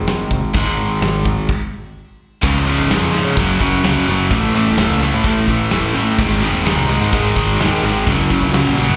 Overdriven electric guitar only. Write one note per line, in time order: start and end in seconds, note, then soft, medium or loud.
0.00 0.52 G#2 medium
0.00 0.53 D#3 medium
0.00 0.54 G#3 loud
0.53 1.47 G#2 medium
0.53 1.48 D#3 medium
0.53 1.48 G#3 loud
2.42 2.65 C#2 medium
2.42 2.65 G#2 medium
2.42 2.66 C#3 medium
2.66 2.88 C#2 medium
2.66 2.89 G#2 medium
2.66 2.90 C#3 medium
2.90 3.12 C#2 medium
2.90 3.13 G#2 loud
2.90 3.13 C#3 medium
3.13 3.36 C#2 medium
3.13 3.36 G#2 medium
3.13 3.36 C#3 medium
3.36 3.59 F#2 loud
3.36 3.60 C#3 loud
3.36 3.60 F#3 loud
3.60 3.82 F#2 medium
3.60 3.83 C#3 medium
3.60 3.84 F#3 loud
3.84 4.06 F#2 medium
3.84 4.07 C#3 medium
3.84 4.07 F#3 medium
4.07 4.30 F#2 medium
4.07 4.30 C#3 medium
4.07 4.30 F#3 medium
4.31 4.53 A2 loud
4.31 4.53 E3 medium
4.31 4.54 A3 loud
4.54 4.77 A2 medium
4.54 4.77 E3 medium
4.54 4.78 A3 medium
4.78 5.00 A2 medium
4.78 5.01 E3 medium
4.78 5.02 A3 medium
5.01 5.23 A2 medium
5.01 5.24 E3 medium
5.01 5.24 A3 medium
5.24 5.46 A2 medium
5.24 5.47 E3 loud
5.24 5.48 A3 loud
5.47 5.70 A2 medium
5.47 5.70 E3 loud
5.47 5.71 A3 loud
5.71 5.93 A2 medium
5.71 5.94 E3 medium
5.71 5.95 A3 medium
5.95 6.17 A2 medium
5.95 6.18 E3 medium
5.95 6.18 A3 loud
6.18 6.40 G#2 medium
6.18 6.41 D#3 loud
6.18 6.43 G#3 loud
6.42 6.64 G#2 medium
6.42 6.65 D#3 medium
6.42 6.66 G#3 medium
6.65 6.88 G#2 medium
6.65 6.89 D#3 medium
6.65 6.90 G#3 medium
6.89 7.11 G#2 medium
6.89 7.12 D#3 medium
6.89 7.13 G#3 medium
7.12 7.35 G#2 medium
7.12 7.36 D#3 medium
7.12 7.37 G#3 loud
7.36 7.59 G#2 medium
7.36 7.59 D#3 medium
7.36 7.61 G#3 loud
7.60 7.82 G#2 medium
7.60 7.82 D#3 medium
7.60 7.84 G#3 medium
7.83 8.05 G#2 medium
7.83 8.05 D#3 medium
7.83 8.07 G#3 loud
8.06 8.29 F#2 medium
8.06 8.30 C#3 loud
8.06 8.30 F#3 loud
8.30 8.52 F#2 medium
8.30 8.53 C#3 medium
8.30 8.53 F#3 medium
8.53 8.75 F#2 medium
8.53 8.76 C#3 medium
8.53 8.77 F#3 medium
8.77 8.96 F#2 medium
8.77 8.96 C#3 medium
8.77 8.96 F#3 medium